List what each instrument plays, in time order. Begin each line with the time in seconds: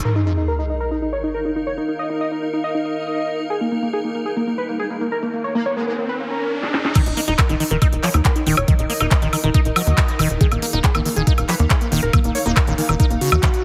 0.05 ambient pad D#4, synth drone D#4 A#4, analog synth lead A#4, sub drop
0.16 analog synth lead D#4
0.26 analog synth lead D#4, closed hi-hat
0.37 analog synth lead D#4, ambient pad A#4 F5, closed hi-hat
0.48 analog synth lead A#4, closed hi-hat
0.59 analog synth lead D#4, closed hi-hat
0.69 analog synth lead D#4, closed hi-hat
0.80 analog synth lead A#4, closed hi-hat
0.91 analog synth lead D#4, closed hi-hat
1.02 analog synth lead D#4, closed hi-hat
1.13 analog synth lead C#5, closed hi-hat
1.23 analog synth lead D#4, closed hi-hat
1.34 analog synth lead A#4, closed hi-hat
1.45 analog synth lead D#4, closed hi-hat
1.56 analog synth lead D#4, closed hi-hat
1.67 analog synth lead C#5, closed hi-hat
1.77 analog synth lead D#4, closed hi-hat
1.88 analog synth lead D#4, closed hi-hat
1.99 analog synth lead D#5, closed hi-hat
2.10 analog synth lead D#4, closed hi-hat
2.21 analog synth lead D#5, closed hi-hat
2.31 analog synth lead D#4, closed hi-hat
2.42 analog synth lead D#4, closed hi-hat
2.53 analog synth lead D#4, closed hi-hat
2.64 analog synth lead D#5, closed hi-hat
2.75 analog synth lead D#4, closed hi-hat
2.85 analog synth lead D#5, closed hi-hat
2.96 closed hi-hat
3.07 closed hi-hat
3.18 closed hi-hat
3.29 closed hi-hat
3.39 closed hi-hat
3.50 analog synth lead G#4, closed hi-hat, riser
3.61 analog synth lead A#3, closed hi-hat
3.72 analog synth lead A#3, closed hi-hat
3.82 analog synth lead A#3, closed hi-hat
3.93 analog synth lead G#4, closed hi-hat
4.04 analog synth lead A#3, closed hi-hat
4.15 analog synth lead A#3, closed hi-hat
4.26 analog synth lead G#4, closed hi-hat
4.36 analog synth lead A#3, closed hi-hat
4.47 analog synth lead A#3, closed hi-hat
4.58 analog synth lead B4, closed hi-hat
4.69 analog synth lead A#3, closed hi-hat
4.80 analog synth lead G#4, closed hi-hat
4.90 analog synth lead A#3, closed hi-hat
5.01 analog synth lead A#3, closed hi-hat
5.12 analog synth lead A#4, closed hi-hat
5.23 analog synth lead A#3, closed hi-hat
5.33 analog synth lead A#3, closed hi-hat
5.44 analog synth lead C#5, closed hi-hat
5.55 analog synth lead A#3, wobble bass A#3, closed hi-hat
5.66 analog synth lead C#5, closed hi-hat
5.77 wobble bass G#3, analog synth lead A#3, closed hi-hat
5.88 wobble bass G#3, analog synth lead A#3, closed hi-hat
5.98 analog synth lead A#3, closed hi-hat
6.09 analog synth lead B4, closed hi-hat
6.20 analog synth lead A#3, closed hi-hat
6.31 analog synth lead A#4, closed hi-hat
6.41 closed hi-hat
6.63 snare
6.74 snare
6.85 snare
6.95 acid bass D#3, synth drone D#4 A#4, analog synth lead A#4, kick, closed hi-hat, crash, high woodblock
7.06 analog synth bass D#1, analog synth lead D#4, closed hi-hat
7.17 acid bass A#3, analog synth lead D#4, open hi-hat
7.28 analog synth bass D#1, analog synth lead D#4, acid bass D#4, closed hi-hat
7.39 analog synth lead A#4, kick, clap, closed hi-hat, high woodblock
7.49 analog synth bass D#1, acid bass D#3, analog synth lead D#4, closed hi-hat
7.60 acid bass D#3, analog synth lead D#4, open hi-hat
7.71 analog synth bass D#1, acid bass D#3, analog synth lead A#4, closed hi-hat
7.82 acid bass D#4, analog synth lead D#4, kick, closed hi-hat, high woodblock
7.92 analog synth bass D#1, analog synth lead D#4, closed hi-hat
8.03 acid bass F3, analog synth lead C#5, clap, open hi-hat
8.14 analog synth bass D#2, analog synth lead D#4, closed hi-hat, high woodblock
8.25 analog synth lead A#4, kick, clap, closed hi-hat
8.36 analog synth lead D#4, closed hi-hat
8.46 analog synth bass D#1, acid bass D#3, analog synth lead D#4, open hi-hat
8.57 analog synth bass D#1, analog synth lead C#5, closed hi-hat, high woodblock
8.68 acid bass D#3, analog synth lead D#4, kick, closed hi-hat
8.79 analog synth bass D#1, analog synth lead D#4, closed hi-hat
8.90 acid bass A#3, analog synth lead D#5, open hi-hat
9.00 analog synth bass D#1, wobble bass A#3, analog synth lead D#4, acid bass D#4, closed hi-hat, high woodblock
9.11 analog synth lead D#5, kick, clap, closed hi-hat
9.22 analog synth bass D#1, acid bass D#3, analog synth lead D#4, closed hi-hat
9.33 acid bass D#3, analog synth lead D#4, open hi-hat, high woodblock
9.44 analog synth bass D#1, acid bass D#3, analog synth lead D#4, closed hi-hat
9.54 acid bass D#4, analog synth lead D#5, kick, closed hi-hat
9.65 analog synth bass D#1, analog synth lead D#4, closed hi-hat
9.76 acid bass F3, wobble bass F#3, analog synth lead D#5, open hi-hat, high woodblock
9.87 analog synth bass D#2, closed hi-hat
9.98 kick, clap, closed hi-hat
10.08 closed hi-hat
10.19 analog synth bass D#1, acid bass D#3, open hi-hat, high woodblock
10.30 analog synth bass D#1, closed hi-hat
10.41 acid bass D#3, analog synth lead G#4, synth drone F5, kick, closed hi-hat
10.52 analog synth bass D#1, analog synth lead A#3, closed hi-hat, high woodblock
10.62 analog synth lead A#3, acid bass A#3, open hi-hat
10.73 analog synth bass D#1, analog synth lead A#3, acid bass D#4, closed hi-hat
10.84 analog synth lead G#4, kick, clap, closed hi-hat
10.95 analog synth bass D#1, acid bass D#3, analog synth lead A#3, closed hi-hat, high woodblock
11.05 acid bass D#3, analog synth lead A#3, open hi-hat
11.16 analog synth bass D#1, acid bass D#3, analog synth lead G#4, closed hi-hat
11.27 analog synth lead A#3, acid bass D#4, kick, closed hi-hat
11.38 analog synth bass D#1, analog synth lead A#3, closed hi-hat, high woodblock
11.49 acid bass F3, analog synth lead B4, clap, open hi-hat
11.59 analog synth bass D#2, analog synth lead A#3, closed hi-hat
11.70 analog synth lead G#4, kick, clap, closed hi-hat, high woodblock
11.81 analog synth lead A#3, closed hi-hat
11.92 analog synth bass D#1, acid bass D#3, analog synth lead A#3, open hi-hat
12.03 analog synth bass D#1, analog synth lead A#4, closed hi-hat
12.13 acid bass D#3, analog synth lead A#3, kick, closed hi-hat, high woodblock
12.24 analog synth bass D#1, analog synth lead A#3, closed hi-hat
12.35 acid bass A#3, analog synth lead C#5, open hi-hat
12.46 analog synth bass D#1, wobble bass A#3, analog synth lead A#3, acid bass D#4, closed hi-hat
12.57 analog synth lead A#4, kick, clap, closed hi-hat, high woodblock
12.67 analog synth bass D#1, acid bass D#3, wobble bass G#3, analog synth lead A#3, closed hi-hat
12.78 acid bass D#3, wobble bass G#3, analog synth lead A#3, open hi-hat
12.89 analog synth bass D#1, acid bass D#3, analog synth lead A#3, high woodblock
13.00 acid bass D#4, analog synth lead A#4, kick, closed hi-hat
13.10 analog synth bass D#1, analog synth lead A#3, closed hi-hat
13.21 acid bass C#3, analog synth lead F#4, open hi-hat
13.32 analog synth bass D#2, acid bass D#3, closed hi-hat, high woodblock
13.43 acid bass D#3, kick, clap, closed hi-hat
13.54 closed hi-hat